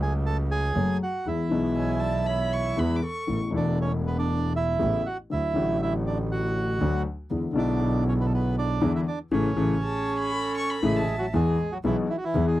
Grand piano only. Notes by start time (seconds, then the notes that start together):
Already playing: C#2 C#3 F#3 A3 C#4 G#4
0.75 F#2 F#3 A3 C#4 G#4
1.26 E2 E3 G#3 B3 G#4
1.49 B1 B2 E3 G#3 B3
1.54 G#4
2.76 E2 E3 G#3 B3 G#4
3.27 A1 A2 C#3 A3 B3 E4
3.51 E1 E2 B2 A3 B3 E4
4.79 A1 A2 C#3 A3 B3 E4
5.30 D2 D3 F#3 A3 F#4
5.54 A1 A2 D3 F#3 A3 F#4
6.81 D2 D3 F#3 A3 F#4
7.30 E2 D3 E3 G#3 B3 E4
7.53 B1 B2 D3 G#3 B3
7.57 E4
8.81 E2 D3 E3 G#3 B3 E4
9.32 C#3 E3 A3
9.56 C#3 E3 A3
10.83 C#3 E3 A3
11.34 E2 E3 G#3 B3 G#4
11.84 B1 B2 E3 G#3 B3 G#4
12.35 E2 E3 G#3 B3 G#4